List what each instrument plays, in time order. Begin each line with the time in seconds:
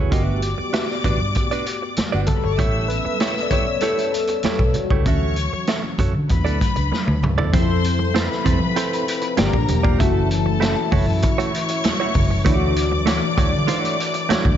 Already playing: fingered electric bass E1, tine electric piano C#3 G#3 B3 E4 F#4 G#4, clean electric guitar B3 E4 G#4
0.11 fingered electric bass G1, tine electric piano A3 B3 F#4 G4, clean electric guitar C#4 F4 A#4 D#5, string section D5 D6, kick, closed hi-hat, muted conga, low conga
0.23 clean electric guitar D4 F#4 B4 E5
0.27 muted conga
0.42 closed hi-hat
0.58 muted clean electric guitar stroke, muted fingered electric bass stroke, high conga
0.73 clean electric guitar D4 F#4 B4 E5, snare, closed hi-hat, muted conga
0.89 muted clean electric guitar stroke, snare
1.04 fingered electric bass A1, clean electric guitar D4 F#4 B4 D5, kick, closed hi-hat, high conga, low conga
1.20 fingered electric bass G2, muted clean electric guitar stroke
1.35 muted clean electric guitar stroke, kick, closed hi-hat, muted conga
1.51 clean electric guitar D4 F#4 B4 D5, closed hi-hat
1.66 muted clean electric guitar stroke, closed hi-hat
1.82 muted clean electric guitar stroke
1.96 muted clean electric guitar stroke, muted fingered electric bass stroke, snare, closed hi-hat, muted conga, high conga
2.12 fingered electric bass G1, clean electric guitar D4 F#4 B4 D5, string section F#4 F#5, muted conga
2.20 string section G4 G5
2.26 tine electric piano A4, string section A4 A5, kick, closed hi-hat, high conga, low conga
2.36 string section B4 B5
2.44 fingered electric bass G1, string section C#5 C#6, muted clean electric guitar stroke
2.51 string section D5 D6
2.58 fingered electric bass A1, tine electric piano G3 B3 C#4, clean electric guitar A3 E4 G4 C#5, string section E5 E6, kick, closed hi-hat, low conga
2.74 muted conga
2.88 tine electric piano B4, closed hi-hat
3.05 muted clean electric guitar stroke, muted fingered electric bass stroke, high conga
3.20 clean electric guitar A3 E4 G4 C#5, snare, closed hi-hat
3.36 muted clean electric guitar stroke, snare
3.43 tine electric piano D5
3.51 clean electric guitar A3 E4 G4 C#5, tine electric piano C#5, kick, closed hi-hat, high conga, low conga
3.67 muted clean electric guitar stroke
3.81 clean electric guitar A3 E4 G4 C#5, tine electric piano A4, closed hi-hat, muted conga
3.98 closed hi-hat, muted conga
4.12 tine electric piano A4, muted clean electric guitar stroke, closed hi-hat
4.27 muted clean electric guitar stroke, closed hi-hat
4.43 clean electric guitar A3 E4 G4 C#5, muted fingered electric bass stroke, snare, closed hi-hat, muted conga, high conga
4.59 fingered electric bass B1, kick, muted conga
4.74 tine electric piano F#4, muted clean electric guitar stroke, closed hi-hat, high conga, low conga
4.90 fingered electric bass C#2, clean electric guitar A3 E4 G4 C#5, kick
5.06 fingered electric bass D2, tine electric piano E3 F#3 C#4, clean electric guitar C#4 F#4 A4 E5, string section C#5 C#6, kick, closed hi-hat, low conga
5.23 muted conga
5.36 closed hi-hat
5.53 muted clean electric guitar stroke, muted fingered electric bass stroke, high conga
5.67 clean electric guitar C#4 F#4 A4 E5, snare, closed hi-hat
5.84 muted clean electric guitar stroke, muted conga
5.98 fingered electric bass F#2, clean electric guitar C#4 F#4 A4 C#5, kick, closed hi-hat, high conga, low conga
6.14 fingered electric bass D3, muted clean electric guitar stroke
6.29 fingered electric bass E2, tine electric piano F#3 A3 D4, string section B4 B5, muted clean electric guitar stroke, kick, closed hi-hat, muted conga
6.45 fingered electric bass D2, clean electric guitar B3 E4 A4 D5, closed hi-hat, muted conga
6.61 kick, closed hi-hat
6.76 fingered electric bass C#2, muted clean electric guitar stroke, closed hi-hat
6.92 muted clean electric guitar stroke, snare, muted conga, high conga
7.07 fingered electric bass D2, muted clean electric guitar stroke, high tom, muted conga
7.23 fingered electric bass C#2, mid tom, high conga, low conga
7.38 fingered electric bass D2, clean electric guitar B3 E4 A4 D5, floor tom
7.52 fingered electric bass F2, french horn section C3 F3 A3 C4 E4, tine electric piano F3 C4 E4, clean electric guitar C4 E4 A4 C5, string section C5 C6, kick, closed hi-hat, muted conga, low conga
7.56 tine electric piano G4
7.63 tine electric piano A4
7.68 muted conga
7.84 closed hi-hat
7.99 muted clean electric guitar stroke, high conga
8.14 clean electric guitar C4 E4 A4 C5, string section B4 B5, snare, closed hi-hat
8.30 muted clean electric guitar stroke, snare, muted conga
8.45 fingered electric bass F2, clean electric guitar C4 E4 A4 C5, kick, closed hi-hat, high conga, low conga
8.60 fingered electric bass F3, muted clean electric guitar stroke
8.76 clean electric guitar C4 E4 A4 C5, closed hi-hat
8.93 closed hi-hat
9.07 muted clean electric guitar stroke, closed hi-hat
9.21 muted clean electric guitar stroke, closed hi-hat
9.37 fingered electric bass G1, french horn section D3 G3 A#3, tine electric piano F3 A#3 D4 G4, clean electric guitar A#3 F4 G4 D5, string section A#4 A#5, snare, closed hi-hat, high conga
9.53 fingered electric bass A#1, kick, muted conga
9.68 fingered electric bass E1, muted clean electric guitar stroke, closed hi-hat, high conga, low conga
9.83 clean electric guitar A#3 F4 G4 D5, kick
9.98 fingered electric bass F#1, tine electric piano E3 G#3 C#4, french horn section E3 F#3 A3 E4, clean electric guitar A3 E4 F#4 E5, string section A4 A5, kick, closed hi-hat, muted conga, low conga
10.03 tine electric piano A3 F#4
10.31 closed hi-hat
10.46 muted clean electric guitar stroke, high conga
10.60 clean electric guitar A3 E4 F#4 E5, snare, closed hi-hat, muted conga
10.76 muted clean electric guitar stroke, muted conga
10.91 fingered electric bass F#1, clean electric guitar A3 E4 F#4 C#5, kick, open hi-hat, high conga, low conga
11.07 fingered electric bass F#2, muted clean electric guitar stroke
11.22 string section C#5 C#6, muted clean electric guitar stroke, kick, closed hi-hat
11.38 clean electric guitar A3 E4 F#4 C#5, closed hi-hat, muted conga
11.53 muted clean electric guitar stroke, closed hi-hat
11.68 muted clean electric guitar stroke, closed hi-hat
11.84 muted clean electric guitar stroke, snare, closed hi-hat, muted conga, high conga
12.00 clean electric guitar A3 E4 F#4 C#5, muted conga
12.14 fingered electric bass F#1, kick, open hi-hat, high conga, low conga
12.30 muted clean electric guitar stroke
12.44 fingered electric bass D2, tine electric piano E3 D4 E4, clean electric guitar A3 E4 F#4 C#5, french horn section D4, string section D5 D6, kick, closed hi-hat, low conga
12.49 tine electric piano E4
12.55 tine electric piano F#4
12.62 muted conga
12.76 closed hi-hat
12.92 muted clean electric guitar stroke, high conga
13.06 clean electric guitar A3 E4 F#4 C#5, snare, closed hi-hat
13.22 muted clean electric guitar stroke, muted conga
13.37 fingered electric bass D2, clean electric guitar A3 E4 F#4 C#5, kick, closed hi-hat, high conga, low conga
13.53 fingered electric bass D3, muted clean electric guitar stroke
13.67 clean electric guitar G#3 D#4 F4 C5, closed hi-hat
13.79 clean electric guitar A3 E4 F#4 C#5
13.84 closed hi-hat, muted conga
14.00 closed hi-hat
14.14 muted clean electric guitar stroke, closed hi-hat
14.29 clean electric guitar A3 E4 F#4 C#5, snare, closed hi-hat, high conga
14.45 fingered electric bass D2, kick